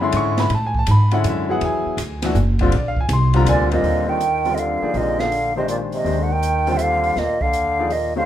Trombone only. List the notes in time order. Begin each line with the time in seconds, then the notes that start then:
3.46 A#2
3.71 A#2
4.08 D#3
4.52 C3
4.57 D3
4.94 A#2
5.19 D3
5.56 C3
5.69 A#2
5.93 C3
6.21 D3
6.30 D#3
6.75 C3
6.81 D3
7.16 A#2
7.42 D3
7.92 A#2
8.16 D3